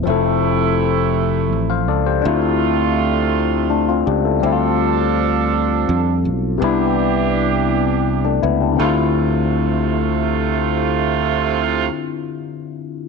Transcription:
<<
  \new Staff \with { instrumentName = "Tine electric piano" } { \time 6/8 \key d \dorian \tempo 4. = 55 << { r2 r16 <c'' f''>16 <a' d''>16 <g' c''>16~ | <g' c''>16 r4. r16 <a d'>16 <c' f'>16 <d' g'>16 <e' a'>16~ | <e' a'>16 r2 r8. | r2 r16 <a d'>16 <b e'>16 <d' g'>16~ |
<d' g'>16 r2 r8. | r2. | } \\ { <f c' e' a'>2. | <c' d' e' f'>2. | <g c' e' f'>2. | <c b d' e'>2. |
<d c' e' f'>2.~ | <d c' e' f'>2. | } >> }
  \new Staff \with { instrumentName = "Horn section" } { \time 6/8 \key d \dorian <c a e'>2~ <c a e'>8 r8 | <c a f'>2~ <c a f'>8 r8 | <f d' a'>2~ <f d' a'>8 r8 | <e d' g'>2~ <e d' g'>8 r8 |
<c a f'>2.~ | <c a f'>2. | }
  \new Staff \with { instrumentName = "Fingered electric bass" } { \clef bass \time 6/8 \key d \dorian f,,2 a,,8 cis,8 | d,2~ d,8 cis,8 | d,2 f,8 b,,8 | c,2~ c,8 cis,8 |
d,2.~ | d,2. | }
>>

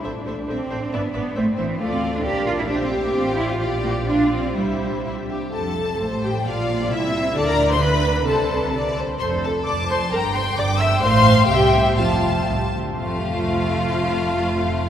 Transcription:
<<
  \new Staff \with { instrumentName = "Violin section" } { \time 2/4 \key a \minor \tempo 4 = 129 e''8 e''8 e''8 e''8 | e''8 e''8 e''8 e''8 | \key f \major f''4 f''4 | e''4 f''4 |
f''4 f''4 | e''4. r8 | a''4. g''8 | f''4 e''4 |
a''16 bes''8 c'''16 b''4 | a''4. r8 | c'''8 a''8 d'''8 c'''8 | bes''8 c'''8 d'''8 e'''8 |
c'''4 g''4 | f''4 r4 | f''2~ | f''2 | }
  \new Staff \with { instrumentName = "Viola section" } { \time 2/4 \key a \minor <a' c''>8 <a' c''>8 <a' c''>8 <a' c''>8 | <b' d''>8 <b' d''>8 c''8 c''8 | \key f \major <a' d''>4 <bes' d''>4 | <g' c''>4 <f' c''>4 |
<f' d''>4 <f' d''>4 | <g' c''>4. r8 | a'4. g'8 | f'4 e'4 |
a'16 bes'8 c''16 b'4 | a'4. r8 | c''8 a'8 d''8 c''8 | bes'8 c''8 d''8 e''8 |
c''4 g'4 | f'4 r4 | f'2~ | f'2 | }
  \new Staff \with { instrumentName = "Violin section" } { \time 2/4 \key a \minor d'2~ | d'4 c'4 | \key f \major f'4 d'4 | g'2 |
g'4 f'4 | e'4 e'8 g'8 | r4 c''4 | d''4 e''4 |
d''4 b'4 | c''4 d''8 c''8 | a'4 a''4 | g''2 |
f''4 e''4 | a''4. r8 | <a f'>2~ | <a f'>2 | }
  \new Staff \with { instrumentName = "Cello section" } { \time 2/4 \key a \minor r8 a8 c'4 | b8 b8 a8 e8 | \key f \major a16 c'8 d'16 g'8 f'16 e'16 | d'16 c'8 bes16 c'8 e'16 f'16 |
r8 bes8 d'8 c'8 | g4 r4 | f,4 a,4 | bes,4 c4 |
d2 | c4. r8 | f,4 f,4 | g,4 g,4 |
a,4 c4 | f,4 c,8 d,8 | f,2~ | f,2 | }
  \new Staff \with { instrumentName = "Double bass section" } { \clef bass \time 2/4 \key a \minor a,,8 a,,8 a,,8 a,,8 | gis,,8 gis,,8 a,,8 a,,8 | \key f \major d,4 bes,,4~ | bes,,4 a,,4 |
bes,,2 | c,4. r8 | f,,4 a,,4 | bes,,4 c,4 |
d,2 | c,4. r8 | f,,4 f,,4 | g,,4 g,,4 |
a,,4 c,4 | f,,4 c,4 | f,,2~ | f,,2 | }
>>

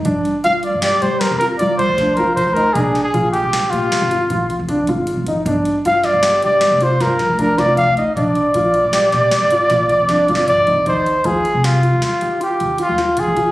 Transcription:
<<
  \new Staff \with { instrumentName = "Trumpet" } { \time 7/4 \key g \phrygian \tempo 4 = 155 r4 f''8 d''8 d''8 c''8 bes'8 bes'8 d''8 c''4 bes'8 c''8 bes'8 | aes'8. aes'8. g'4 f'2 r2 r8 | r4 f''8 d''4 d''4 c''8 bes'4 bes'8 d''8 f''8 ees''8 | d''1. d''4 |
c''4 aes'4 f'4 f'4 g'4 f'4 aes'4 | }
  \new Staff \with { instrumentName = "Grand piano" } { \time 7/4 \key g \phrygian d'4 f'4 g'8 g'4 f'8 f'4 d'8 f'4 ees'8 | d'4 f'4 g'8 g'4 f'8 f'4 d'8 f'4 ees'8 | d'4 f'4 g'8 g'4 f'8 f'4 d'8 f'4 ees'8 | d'4 f'4 g'8 g'4 f'8 f'4 d'8 f'4 ees'8 |
ees'4 f'4 g'8 f'4 g'8 f'4 f'8 f'4 f'8 | }
  \new Staff \with { instrumentName = "Upright bass" } { \clef bass \time 7/4 \key g \phrygian g,8 r8 g8. g,8. g8 r16 f,8. g8 r16 d,8 r16 f,8. d,8 r16 | bes,,8 r8 bes,8. bes,,8. bes,8 r16 aes,,8. bes,8 r16 f,8 r16 aes,,8. aes,,8 r16 | g,,8 r8 g,8. g,,8. g,8 r16 f,,8. g,8 r16 d,8 r16 f,,8. d,8 r16 | bes,,8 r8 bes,8. bes,,8. bes,8 r16 aes,,8. bes,8 r16 f,8 r16 aes,,8 g,8 f,8 |
ees,4 ees,8 r16 c4 ees,8 r16 ees8 r8 ees,8 r16 ees,4 ees8. | }
  \new DrumStaff \with { instrumentName = "Drums" } \drummode { \time 7/4 <hh bd>8 hh8 hh8 hh8 <hh sn>8 hh8 <hh sn>8 hh8 hh8 <hh bd>8 <hh bd sn>8 hh8 <hh bd>8 hh8 | <hh bd>8 <hh sn>8 <hh bd>8 hh8 <hh sn>8 hh8 <hh sn>8 hh8 <hh bd>8 <hh bd>8 <hh bd>8 hh8 hh8 <hh bd>8 | <hh bd>8 hh8 hh8 <hh sn>8 <hh sn>8 hh8 <hh sn>8 hh8 <hh sn>8 <hh bd sn>8 <hh bd>8 <hh sn>8 <hh bd>8 hh8 | <hh bd>8 hh8 <hh bd>8 hh8 <hh sn>8 <hh sn>8 <hh sn>8 hh8 <hh bd sn>8 <hh bd>8 \tuplet 3/2 { <hh bd sn>16 r16 r16 hh16 sn16 r16 <hh bd>16 r16 bd16 hh16 bd16 r16 } |
<hh bd>8 hh8 <hh bd>8 hh8 <hh sn>8 hh8 <hh sn>8 hh8 hh8 hh8 hh8 <hh sn>8 <hh bd>8 <hh bd>8 | }
>>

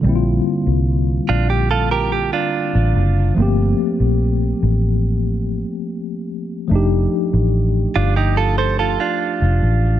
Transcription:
<<
  \new Staff \with { instrumentName = "Clean electric guitar" } { \time 4/4 \key bes \major \tempo 4 = 72 r4. <d' f'>16 g'16 <f' a'>16 <g' bes'>16 g'16 <d' f'>4~ <d' f'>16 | r1 | r4. <d' f'>16 <ees' g'>16 <f' a'>16 <a' c''>16 <f' a'>16 <d' f'>4~ <d' f'>16 | }
  \new Staff \with { instrumentName = "Tine electric piano" } { \time 4/4 \key bes \major <d g bes c' e' f'>1 | <f a bes c' g'>1 | <f a d' ees' g'>1 | }
  \new Staff \with { instrumentName = "Fingered electric bass" } { \clef bass \time 4/4 \key bes \major bes,,8 r16 c,8. bes,,4~ bes,,16 r8 a,,16 ges,,8 | g,,8 r16 bes,,8. a,,4~ a,,16 r4 r16 | f,,8 r16 a,,8. g,,4~ g,,16 r8 f,,16 a,,8 | }
>>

